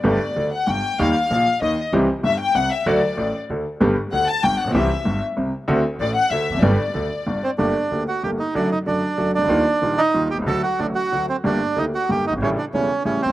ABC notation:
X:1
M:3/4
L:1/16
Q:1/4=189
K:Dmix
V:1 name="Violin section"
d6 f2 g4 | =f8 _e3 z | z4 e2 g2 f2 e2 | d6 z6 |
z4 f2 a2 g2 f2 | e6 z6 | z4 d2 f2 e4 | d8- d2 z2 |
[K:Gm] z12 | z12 | z12 | z12 |
z12 | z12 |]
V:2 name="Bandoneon"
z12 | z12 | z12 | z12 |
z12 | z12 | z12 | z8 z2 C2 |
[K:Gm] D6 ^F2 G2 E2 | D2 E2 D6 D2- | D6 E4 G2 | A2 ^F2 D2 F4 C2 |
D4 E2 ^F2 G2 E2 | ^C2 D2 C4 C2 =C2 |]
V:3 name="Grand piano" clef=bass
[G,,,G,,D,A,B,G]2 z2 [D,,D,]2 z2 [G,,,G,,]2 z2 | [_E,,_E,G,_B,G]2 z2 [_B,,,_B,,]2 z2 [E,,E,]2 z2 | [C,,C,E,G,CG]2 z2 [G,,,G,,]2 z2 [C,,C,]2 z2 | [D,,D,F,A,F]2 z2 [A,,,A,,]2 z2 [D,,D,]2 z2 |
[G,,,G,,D,G,B,G]2 z2 [D,,D,]2 z2 [G,,,G,,]2 z/2 A,,,/2 _B,,,/2 =B,,,/2 | [C,,C,E,G,CG]2 z2 [G,,,G,,]2 z2 [C,,C,]2 z2 | [D,,D,A,CF]2 z2 [A,,,A,,]2 z2 [D,,D,]2 z/2 E,,/2 =F,,/2 ^F,,/2 | [G,,,G,,D,G,B,G]2 z2 [D,,D,]2 z2 [G,,,G,,]2 z2 |
[K:Gm] [G,,,G,,D,A,B,G]2 z2 [D,,D,A,B,G]2 z2 [G,,,G,,D,A,B,G]2 z2 | [^F,,D,^F,A,^F]2 z2 [F,,D,F,A,F]2 z2 [F,,D,F,A,F]2 z/2 C,,/2 ^C,,/2 D,,/2 | [E,,E,G,B,F]2 z2 [B,,,B,,E,G,B,F]2 z2 [E,,E,G,B,F]2 z/2 =B,,,/2 C,,/2 ^C,,/2 | [D,,D,^F,A,^F]2 z2 [A,,,A,,D,F,A,F]2 z2 [D,,D,F,A,F]2 z2 |
[G,,,G,,D,A,B,G]2 z2 [D,,D,A,B,G]2 z2 [G,,,G,,D,A,B,G]2 z/2 ^F,,,/2 G,,,/2 _A,,,/2 | [A,,,A,,^C,G,A,=E]2 z2 [=E,,,=E,,C,G,A,E]2 z2 [A,,,A,,C,G,A,E]2 z/2 =B,,,/2 z |]
V:4 name="Upright bass" clef=bass
G,,,3/2 z2 z/2 D,,3/2 z2 z/2 G,,,3/2 z2 z/2 | _E,,3/2 z2 z/2 _B,,,3/2 z2 z/2 E,,3/2 z2 z/2 | C,,3/2 z2 z/2 G,,,3/2 z2 z/2 C,,3/2 z2 z/2 | D,,3/2 z2 z/2 A,,,3/2 z2 z/2 D,,3/2 z2 z/2 |
G,,,3/2 z2 z/2 D,,3/2 z2 z/2 G,,,3/2 z A,,,/2 _B,,,/2 =B,,,/2 | C,,3/2 z2 z/2 G,,,3/2 z2 z/2 C,,3/2 z2 z/2 | D,,3/2 z2 z/2 A,,,3/2 z2 z/2 D,,3/2 z E,,,/2 =F,,,/2 ^F,,,/2 | G,,,3/2 z2 z/2 D,,3/2 z2 z/2 G,,,3/2 z2 z/2 |
[K:Gm] G,,,3/2 z2 z/2 D,,3/2 z2 z/2 G,,,3/2 z2 z/2 | ^F,,,3/2 z2 z/2 F,,,3/2 z2 z/2 F,,,3/2 z C,,/2 ^C,,/2 D,,/2 | E,,3/2 z2 z/2 B,,,3/2 z2 z/2 E,,3/2 z =B,,,/2 C,,/2 ^C,,/2 | D,,3/2 z2 z/2 A,,,3/2 z2 z/2 D,,3/2 z2 z/2 |
G,,,3/2 z2 z/2 D,,3/2 z2 z/2 G,,,3/2 z ^F,,,/2 G,,,/2 _A,,,/2 | A,,,3/2 z2 z/2 =E,,,3/2 z2 z/2 A,,,3/2 z =B,,,/2 z |]